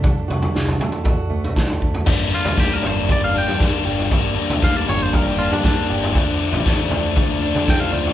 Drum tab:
CC |----------------|x---------------|----------------|----------------|
SD |----o-------o---|----o-------o---|----o-------o---|----o-------o---|
T2 |------o----oo---|---o------------|---o------------|---o------------|
FT |o-oo-oooo----o-o|o--o--o-o--o---o|o--o--o-o--o---o|o--o--o-o--o---o|
BD |o-------o---o-o-|o---o---o---o---|o---o---o---o---|o---o---o---o---|